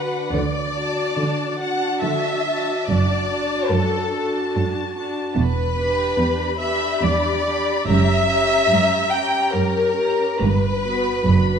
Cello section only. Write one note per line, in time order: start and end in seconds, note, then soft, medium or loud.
0.00 0.21 D3 soft
0.34 1.06 D3 soft
1.19 1.91 D3 soft
2.04 2.77 D3 medium
2.89 3.60 F#2 medium
3.73 4.43 F#2 medium
4.55 5.24 F#2 medium
5.36 6.05 E2 medium
6.18 6.89 E2 medium
7.03 7.75 E2 medium
7.88 8.59 F#2 medium
8.71 9.42 F#2 medium
9.56 10.28 F#2 medium
10.40 11.15 G2 medium
11.27 11.59 F#2 medium